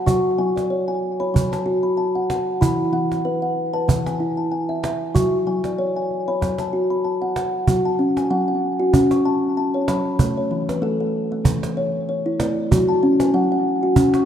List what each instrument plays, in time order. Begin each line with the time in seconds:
Already playing: kalimba F#5
0.06 kalimba F#3 F#4 C#6, cajon bass
0.38 kalimba F#3 G#5
0.56 kalimba D5, cajon slap
0.70 kalimba C#5
0.88 kalimba G#5
1.20 kalimba C#5 B5, cajon slap
1.34 kalimba F#3, cajon bass
1.52 kalimba A5, cajon slap
1.66 kalimba F#4, cajon slap
1.83 kalimba B5
1.97 kalimba A5
2.15 kalimba F#5, cajon slap
2.30 kalimba F#5, cajon slap
2.61 kalimba E3 E4 B5, cajon bass
2.93 kalimba E3 F#5
3.12 cajon slap
3.25 kalimba B4
3.42 kalimba F#5
3.73 kalimba B4 A5, cajon slap
3.88 kalimba E3, cajon bass
4.06 kalimba G#5, cajon slap
4.20 kalimba E4, cajon slap
4.37 kalimba A5
4.52 kalimba G#5
4.69 kalimba E5, cajon slap
4.83 kalimba E5, cajon slap
5.14 kalimba F#3 F#4 C#6, cajon bass
5.47 kalimba F#3 G#5
5.64 kalimba D5, cajon slap
5.78 kalimba C#5
5.96 kalimba G#5
6.11 cajon slap
6.28 kalimba C#5 B5
6.41 kalimba F#3, cajon bass, cajon slap
6.58 kalimba A5, cajon slap
6.73 kalimba F#4
6.90 kalimba B5
7.05 kalimba A5, cajon slap
7.22 kalimba F#5, cajon slap
7.36 kalimba F#5, cajon slap
7.67 kalimba F#3 F#4, cajon bass
7.85 kalimba A5
7.99 kalimba C#4, cajon slap
8.17 kalimba G#5, cajon slap
8.30 kalimba F#3 F#5
8.48 kalimba F#5
8.80 kalimba F#4
8.93 kalimba C#4, cajon bass
9.11 kalimba C#6, cajon slap
9.25 kalimba A5
9.57 kalimba A5
9.74 kalimba C#5
9.88 kalimba F#3 B5, cajon slap
10.05 cajon slap
10.19 kalimba A3, cajon bass
10.37 kalimba C#5
10.51 kalimba E3, cajon slap
10.69 kalimba B4, cajon slap
10.82 kalimba A3 A4
11.00 kalimba A4
11.32 kalimba A3
11.45 kalimba E3, cajon bass
11.63 cajon slap
11.77 kalimba C#5
12.09 kalimba C#5
12.26 kalimba E4
12.39 kalimba A3 D5, cajon slap
12.57 cajon slap
12.71 kalimba F#3 F#4, cajon bass
12.88 kalimba A5
13.02 kalimba C#4, cajon slap
13.20 kalimba G#5, cajon slap
13.34 kalimba F#3 F#5
13.52 kalimba F#5
13.83 kalimba F#4
13.96 kalimba C#4, cajon bass
14.14 kalimba C#6, cajon slap